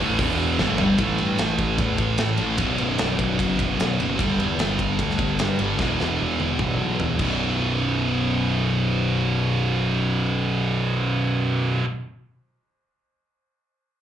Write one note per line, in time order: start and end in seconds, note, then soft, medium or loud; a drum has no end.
0.00 0.18 A1 medium
0.00 0.18 A2 loud
0.00 0.18 E3 loud
0.00 0.19 A3 loud
0.18 0.56 E1 loud
0.18 0.58 E2 loud
0.18 0.59 B2 medium
0.18 0.59 E3 loud
0.18 kick loud
0.18 open hi-hat medium
0.59 0.68 G1 loud
0.59 0.68 G2 medium
0.59 0.69 D3 loud
0.59 snare medium
0.69 0.78 A1 medium
0.69 0.78 A2 medium
0.69 0.78 E3 loud
0.78 0.97 G1 loud
0.78 0.97 G2 loud
0.78 0.99 D3 loud
0.78 0.99 G3 loud
0.78 floor tom loud
0.98 1.18 A1 medium
0.98 2.37 A2 medium
0.98 2.38 E3 medium
0.98 2.37 A3 loud
0.98 kick loud
0.98 ride medium
1.18 1.37 G2 medium
1.18 ride medium
1.38 1.57 A1 medium
1.38 snare loud
1.38 ride medium
1.59 1.78 A1 medium
1.59 kick medium
1.59 ride medium
1.78 1.97 E2 medium
1.78 kick medium
1.78 ride medium
1.98 2.17 A1 medium
1.98 kick medium
1.98 ride medium
2.18 2.38 A2 medium
2.18 snare loud
2.18 ride loud
2.37 2.58 A1 medium
2.37 2.58 E3 medium
2.37 2.57 A3 medium
2.37 ride medium
2.42 2.56 A2 medium
2.57 2.77 B0 medium
2.57 3.97 B1 medium
2.57 3.98 F#2 medium
2.57 kick loud
2.57 ride medium
2.61 3.96 B2 loud
2.78 2.98 B0 medium
2.78 ride medium
2.98 3.18 B0 medium
2.98 snare loud
2.98 ride loud
3.19 3.38 B0 medium
3.19 kick medium
3.19 ride medium
3.39 3.58 F#1 medium
3.39 kick medium
3.39 ride medium
3.59 3.78 F#1 medium
3.59 kick medium
3.59 ride medium
3.79 3.98 B0 medium
3.79 snare loud
3.79 ride medium
3.97 4.18 F#1 medium
3.97 4.17 B1 medium
3.97 4.18 F#2 medium
3.97 4.17 B2 medium
3.97 ride medium
4.17 4.38 G1 medium
4.17 5.57 G2 medium
4.17 5.58 D3 medium
4.17 5.57 G3 medium
4.17 kick loud
4.17 ride medium
4.38 4.58 E2 medium
4.38 ride medium
4.58 4.78 G1 medium
4.58 snare loud
4.58 ride medium
4.79 4.98 G1 medium
4.79 kick medium
4.79 ride medium
4.99 5.18 D2 medium
4.99 kick medium
4.99 ride medium
5.10 snare soft
5.19 5.38 G1 medium
5.19 kick medium
5.19 ride medium
5.39 5.58 G2 medium
5.39 snare loud
5.39 ride medium
5.58 5.78 G1 medium
5.58 5.77 G2 medium
5.58 5.79 D3 medium
5.58 5.77 G3 medium
5.58 ride medium
5.77 5.98 E1 medium
5.77 7.18 E2 medium
5.77 7.19 B2 medium
5.77 7.20 E3 loud
5.77 kick loud
5.77 snare medium
6.00 6.19 E1 medium
6.00 snare medium
6.21 6.39 E1 medium
6.40 6.59 E1 medium
6.40 high tom medium
6.59 6.79 B0 medium
6.59 kick medium
6.59 mid tom medium
6.80 6.99 B1 medium
6.99 7.18 E1 medium
6.99 floor tom loud
7.19 11.78 B0 medium
7.19 11.82 B1 medium
7.19 11.85 F#2 medium
7.19 kick loud
7.19 crash medium
7.23 11.86 B2 loud